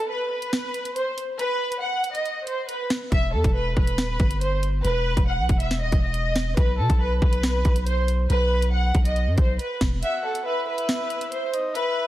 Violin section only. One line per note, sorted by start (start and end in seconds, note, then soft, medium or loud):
0.10 0.27 B4 medium
0.31 0.92 B4 medium
0.96 1.13 C5 medium
1.39 1.80 B4 loud
1.82 2.13 F#5 medium
2.15 2.45 D#5 medium
2.47 2.64 C5 medium
2.69 2.86 B4 medium
3.12 3.29 E5 loud
3.33 3.51 A4 medium
3.55 3.72 B4 medium
3.77 4.37 B4 medium
4.41 4.58 C5 medium
4.84 5.25 B4 loud
5.28 5.58 F#5 medium
5.60 5.77 E5 medium
5.82 5.99 D#5 medium
6.03 6.54 D#5 medium
6.57 6.74 B4 medium
6.79 6.96 A4 medium
7.00 7.17 B4 medium
7.22 7.83 B4 medium
7.87 8.04 C5 medium
8.30 8.70 B4 loud
8.73 9.03 F#5 medium
9.05 9.36 D#5 medium
9.38 9.55 C5 medium
9.59 9.76 B4 medium
10.03 10.20 E5 medium
10.24 10.41 A4 medium
10.46 10.63 B4 medium
10.67 11.28 B4 medium
11.32 11.49 C5 medium
11.75 12.07 B4 loud